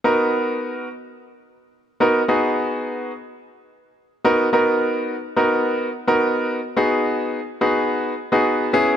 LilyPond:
\new Staff \with { instrumentName = "Grand piano" } { \time 4/4 \key b \major \tempo 4 = 107 <b dis' fis' ais'>4. r2 <b dis' fis' ais'>16 r16 | <b dis' fis' gis'>4. r2 <b dis' fis' ais'>8 | <b dis' fis' ais'>4 r8 <b dis' fis' ais'>4 r16 <b dis' fis' ais'>4 r16 | <b dis' fis' gis'>4 r8 <b dis' fis' gis'>4 r16 <b dis' fis' gis'>8. <b cis' e' gis'>8 | }